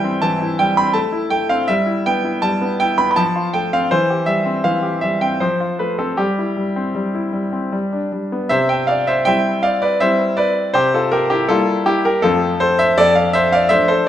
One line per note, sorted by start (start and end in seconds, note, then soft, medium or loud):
0.00 0.21 E3 medium
0.00 0.16 G3 medium
0.00 0.41 E4 soft
0.00 0.98 E5 medium
0.00 0.22 G5 medium
0.04 0.34 C4 medium
0.22 0.94 E3 medium
0.22 0.59 A5 medium
0.41 0.70 E4 medium
0.59 0.89 G3 medium
0.59 0.77 G5 medium
0.77 0.96 C4 medium
0.77 0.96 B5 medium
0.93 1.29 A3 medium
0.93 1.32 A5 medium
1.12 1.43 E4 medium
1.30 1.62 A3 soft
1.30 1.50 G5 medium
1.49 1.69 C4 medium
1.49 1.69 F5 medium
1.68 2.41 G3 medium
1.68 2.06 E5 medium
1.86 2.17 E4 medium
2.06 2.37 B3 medium
2.06 2.44 G5 medium
2.24 2.55 E4 medium
2.42 3.15 G3 medium
2.42 2.80 A5 medium
2.62 2.92 B3 medium
2.80 3.10 E4 medium
2.80 2.99 G5 medium
2.98 3.17 B3 medium
2.98 3.09 B5 medium
3.11 3.18 B5 medium
3.16 3.88 F3 medium
3.16 3.53 A5 medium
3.35 3.65 F4 medium
3.54 3.84 A3 soft
3.54 3.72 G5 medium
3.73 3.91 C4 medium
3.73 3.91 F5 medium
3.91 4.63 E3 medium
3.91 4.28 C5 medium
4.10 4.39 G4 soft
4.26 4.57 G3 soft
4.26 4.64 E5 medium
4.45 4.76 C4 soft
4.64 5.38 E3 medium
4.64 5.02 F5 medium
4.83 5.13 G4 soft
5.01 5.33 G3 soft
5.01 5.21 E5 medium
5.21 5.41 C4 soft
5.21 5.40 G5 medium
5.40 6.16 F3 medium
5.40 5.79 C5 medium
5.60 5.91 F4 soft
5.79 6.11 A3 soft
5.79 5.99 B4 medium
5.99 6.18 C4 soft
5.99 6.18 A4 medium
6.17 6.55 G3 medium
6.17 8.11 G4 medium
6.38 6.69 E4 soft
6.57 6.88 G3 soft
6.76 7.07 C4 soft
6.95 7.31 G3 medium
7.14 7.46 E4 soft
7.33 7.65 G3 soft
7.53 7.73 C4 soft
7.72 8.11 G3 medium
7.93 8.23 D4 soft
8.12 8.42 G3 soft
8.32 8.50 B3 soft
8.49 9.23 C3 medium
8.49 8.68 C5 medium
8.49 8.68 E5 loud
8.69 8.87 E5 medium
8.69 8.88 G5 medium
8.87 9.06 D5 medium
8.87 9.06 F5 medium
9.07 9.25 C5 medium
9.07 9.25 E5 medium
9.25 9.96 G3 medium
9.25 9.96 C4 medium
9.25 9.97 E4 medium
9.25 9.61 E5 medium
9.25 9.63 G5 loud
9.63 9.80 D5 medium
9.63 9.81 F5 medium
9.82 9.99 B4 medium
9.82 10.00 D5 medium
10.00 10.71 G3 soft
10.00 10.71 C4 medium
10.00 10.71 E4 medium
10.00 10.35 C5 medium
10.00 10.37 E5 medium
10.37 10.72 B4 medium
10.37 10.74 D5 medium
10.74 11.46 C3 medium
10.74 10.92 G4 medium
10.74 10.92 C5 loud
10.94 11.11 F4 medium
10.94 11.12 A4 medium
11.11 11.28 G4 medium
11.11 11.30 A#4 medium
11.30 11.48 E4 medium
11.30 11.48 G4 medium
11.49 12.18 G3 medium
11.49 12.19 A#3 medium
11.49 11.85 E4 medium
11.49 11.84 F4 medium
11.49 11.85 A4 medium
11.86 12.03 E4 medium
11.86 12.04 G4 medium
12.05 12.22 G4 medium
12.05 12.23 A#4 medium
12.22 12.94 F2 medium
12.22 12.93 F3 medium
12.22 12.93 A3 medium
12.22 12.93 C4 medium
12.22 12.57 F4 medium
12.22 12.59 A4 loud
12.60 12.77 A4 medium
12.60 12.78 C5 medium
12.79 12.96 C5 medium
12.79 12.97 E5 loud
12.98 13.69 F2 medium
12.98 13.14 A4 medium
12.98 13.15 D5 loud
13.15 13.33 D5 medium
13.15 13.33 F5 medium
13.33 13.51 C5 medium
13.33 13.52 E5 loud
13.52 13.70 D5 medium
13.52 13.70 F5 medium
13.69 14.09 F3 medium
13.69 14.09 A3 medium
13.69 14.09 D4 medium
13.69 13.87 C5 medium
13.69 13.88 E5 loud
13.88 14.06 A4 medium
13.88 14.07 C5 medium